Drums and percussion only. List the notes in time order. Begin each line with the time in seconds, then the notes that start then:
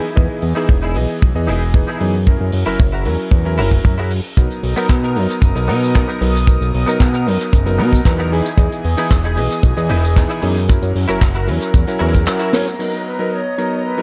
0.17 kick
0.42 open hi-hat
0.69 kick
0.95 open hi-hat
1.22 kick
1.48 open hi-hat
1.74 kick
2.00 open hi-hat
2.27 kick
2.52 open hi-hat
2.80 kick
3.05 open hi-hat
3.31 kick
3.59 open hi-hat
3.71 kick
3.85 kick
4.11 open hi-hat
4.37 kick, closed hi-hat, shaker
4.51 closed hi-hat, shaker
4.64 open hi-hat
4.77 shaker
4.89 kick, clap, closed hi-hat, shaker
5.04 closed hi-hat, shaker
5.16 open hi-hat
5.30 closed hi-hat, shaker
5.42 kick, closed hi-hat, shaker
5.56 closed hi-hat, shaker
5.70 open hi-hat
5.83 shaker
5.95 kick, clap, closed hi-hat, shaker
6.10 shaker
6.21 open hi-hat
6.36 shaker
6.47 kick, closed hi-hat, shaker
6.62 closed hi-hat, shaker
6.75 open hi-hat
6.88 closed hi-hat, shaker
7.00 kick, clap, closed hi-hat, shaker
7.14 closed hi-hat, shaker
7.28 open hi-hat
7.41 closed hi-hat, shaker
7.53 kick, closed hi-hat, shaker
7.67 closed hi-hat, shaker
7.80 open hi-hat
7.92 kick, closed hi-hat, shaker
8.05 kick, clap, closed hi-hat, shaker
8.20 closed hi-hat, shaker
8.33 open hi-hat
8.46 closed hi-hat, shaker
8.58 kick, closed hi-hat, shaker
8.72 closed hi-hat, shaker
8.84 open hi-hat
8.98 shaker
9.11 kick, clap, shaker
9.24 closed hi-hat, shaker
9.37 open hi-hat
9.51 closed hi-hat, shaker
9.63 kick, closed hi-hat, shaker
9.77 closed hi-hat, shaker
9.89 open hi-hat
10.05 shaker
10.16 kick, clap, closed hi-hat, shaker
10.30 shaker
10.42 open hi-hat
10.57 shaker
10.69 kick, closed hi-hat, shaker
10.83 closed hi-hat, shaker
10.96 open hi-hat
11.09 closed hi-hat, shaker
11.21 kick, clap, closed hi-hat, shaker
11.34 closed hi-hat, shaker
11.48 open hi-hat
11.61 closed hi-hat, shaker
11.74 kick, closed hi-hat, shaker
11.87 closed hi-hat, shaker
12.00 open hi-hat
12.14 kick, closed hi-hat, shaker
12.26 clap, closed hi-hat, shaker
12.40 closed hi-hat, shaker
12.53 snare, open hi-hat
12.66 closed hi-hat, shaker
12.80 crash
13.59 cross-stick